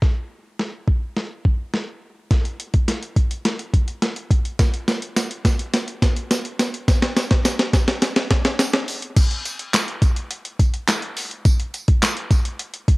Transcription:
0.02 kick, snare
0.59 snare
0.88 kick
1.17 snare
1.45 kick
1.74 snare
2.31 kick, snare, closed hi-hat
2.45 closed hi-hat
2.60 closed hi-hat
2.74 kick, closed hi-hat
2.88 snare, closed hi-hat
3.02 closed hi-hat
3.16 kick, closed hi-hat
3.31 closed hi-hat
3.45 snare, closed hi-hat
3.59 closed hi-hat
3.74 kick, closed hi-hat
3.88 closed hi-hat
4.02 snare, closed hi-hat
4.16 closed hi-hat
4.31 kick, closed hi-hat
4.45 closed hi-hat
4.59 kick, snare, closed hi-hat, tambourine
4.74 closed hi-hat
4.88 snare, closed hi-hat, tambourine
5.02 closed hi-hat
5.16 snare, closed hi-hat, tambourine
5.31 closed hi-hat
5.45 kick, snare, closed hi-hat, tambourine
5.59 closed hi-hat
5.74 snare, closed hi-hat, tambourine
5.88 closed hi-hat
6.02 kick, snare, closed hi-hat, tambourine
6.16 closed hi-hat
6.31 snare, closed hi-hat, tambourine
6.45 closed hi-hat
6.59 snare, closed hi-hat, tambourine
6.74 closed hi-hat
6.88 kick, snare, closed hi-hat, tambourine
7.02 snare, closed hi-hat
7.17 snare, closed hi-hat, tambourine
7.31 kick, snare, closed hi-hat
7.45 snare, closed hi-hat, tambourine
7.59 snare, closed hi-hat
7.73 kick, snare, closed hi-hat, tambourine
7.88 snare, closed hi-hat
8.02 snare, closed hi-hat, tambourine
8.16 snare, closed hi-hat
8.31 kick, snare, closed hi-hat
8.45 snare, closed hi-hat
8.59 snare, closed hi-hat, tambourine
8.73 snare, closed hi-hat
8.88 open hi-hat, tambourine
9.02 closed hi-hat
9.17 kick, closed hi-hat, crash, tambourine
9.31 closed hi-hat
9.45 closed hi-hat, tambourine
9.59 closed hi-hat
9.74 snare, clap, closed hi-hat, tambourine
9.88 closed hi-hat
10.02 kick, closed hi-hat, tambourine
10.16 closed hi-hat
10.31 closed hi-hat
10.45 closed hi-hat
10.59 kick, closed hi-hat, tambourine
10.74 closed hi-hat
10.88 snare, clap, closed hi-hat, tambourine
11.02 closed hi-hat
11.17 open hi-hat, tambourine
11.31 closed hi-hat
11.45 kick, closed hi-hat, tambourine
11.60 closed hi-hat
11.74 closed hi-hat, tambourine
11.88 kick, closed hi-hat
12.02 snare, clap, closed hi-hat, tambourine
12.17 closed hi-hat
12.31 kick, closed hi-hat, tambourine
12.45 closed hi-hat
12.59 closed hi-hat
12.74 closed hi-hat
12.88 kick, closed hi-hat

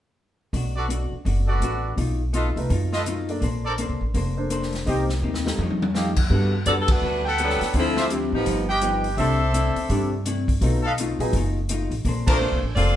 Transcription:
0.53 B1 B2 A3 D4 F#4, kick, open hi-hat
0.76 F#4 A4 B4 D5
0.88 B2 A3 D4 F#4, closed hi-hat
1.12 muted upright bass stroke
1.25 F#1 B2 A3 D4 F#4, kick, open hi-hat
1.46 F#4 A4 B4 D5
1.60 A1 B2 A3 D4 F#4, closed hi-hat
1.96 B1 B2 A3 D#4 F4, kick, open hi-hat
2.33 B2 A3 D#4 F4 A4 B4 D#5, closed hi-hat
2.56 C2 A3 D#4 F4 B4, open hi-hat
2.69 F#2 B2 A3 D#4 F4, kick, open hi-hat
2.92 F4 A4 B4 D#5, snare
3.06 B2 A3 D#4 F4, closed hi-hat
3.29 A#3 D4 A4 D5, open hi-hat
3.40 A#1 A#3 D4 A4 C5, kick, open hi-hat
3.65 A4 A#4 C5 D5
3.78 A#3 D4 A4 C5, closed hi-hat
3.89 C2
4.01 A1
4.14 F1 A#3 D4 A4 C5, kick, open hi-hat
4.37 A#3 D4 A4 C5
4.50 A#3 D4 A4 C5, closed hi-hat
4.62 snare
4.73 snare, open hi-hat
4.86 C2 C3 A#3 D#4 G4 A#4 C5 D#5, kick, open hi-hat
5.09 snare
5.22 D#2 C3 A#3 D#4 G4
5.34 snare
5.45 G3 D#4 F4 A4, snare
5.58 F2 F3 A3, high tom
5.62 D#4 G4
5.70 high tom
5.82 high tom
5.94 F3 A3 D#4 G4 A4 D#5 F5, snare
6.16 kick, crash
6.30 G2 G3 B3 D4 F#4 A4, kick
6.35 A4
6.66 F#2 G3 B3 D4 F#4 A4 D5, closed hi-hat
6.82 A4
6.88 A3 D4 F#4 B4, kick, ride
7.02 D2 G3 B3 F#4
7.06 A4
7.24 A4 B4 F#5 G5
7.38 G3 B3 D4 F#4 A4, closed hi-hat
7.42 F#3 A4
7.50 snare
7.61 muted upright bass stroke, snare, open hi-hat
7.74 D2 D3 F3 C4 D4 E4 A4, kick, open hi-hat
7.78 F3 E4 A4
7.96 F4 C5 D5 E5, snare
8.10 D3 F3 C4 D4 E4 G4, closed hi-hat
8.32 A1 F3 B3 D#4 G4
8.45 G1 G2 F3 B3 D#4, kick, open hi-hat
8.67 G4 B4 D#5 G5
8.81 G2 F3 B3 D#4, closed hi-hat
9.04 open hi-hat
9.16 C2 C3 G3 A3 C4 D4 E4 A4 C5 D5 E5, kick, open hi-hat
9.21 E4
9.52 C3 A3 D4 E4, closed hi-hat
9.75 muted upright bass stroke, open hi-hat
9.89 G2 C3 G3 A3 C4 D4 E4 G4, kick, open hi-hat
10.25 C3 A3 D4 E4, closed hi-hat
10.48 kick, open hi-hat
10.61 B1 B2 F#3 A3 B3 D#4 F4 A4, kick, open hi-hat
10.83 A4 B4 D#5 F5
10.98 B2 A3 D#4 F4, closed hi-hat
11.19 A#1 F#3 B3 D#4 F4 G#4, open hi-hat
11.33 F#1 B2 A3, kick, open hi-hat
11.37 D#4 F4
11.69 B2 A3 D#4 F4, closed hi-hat
11.91 A1, open hi-hat
12.05 A#1 A#3 D4 A4 C5, kick, open hi-hat
12.26 F3 A3 A#3 C4 D4 F4 A4 A#4 C5 D5 A5, kick, ride
12.41 A#3 D4 A4 C5
12.52 C2
12.63 A1
12.75 F1 A#3 C4 D4 F4 A4 C5 D5, kick, open hi-hat

